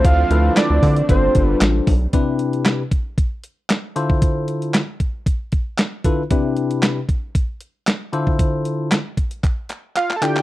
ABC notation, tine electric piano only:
X:1
M:4/4
L:1/8
Q:1/4=115
K:C
V:1 name="Tine electric piano"
[EFAc] [EFAB]3 [DFAc]3 z | [C,DEGB]3 z4 [D,EFAc]- | [D,EFAc]2 z4 z [D,EFAB] | [C,DEGB]3 z4 [D,EFAc]- |
[D,EFAc]2 z4 z [D,EFAd] |]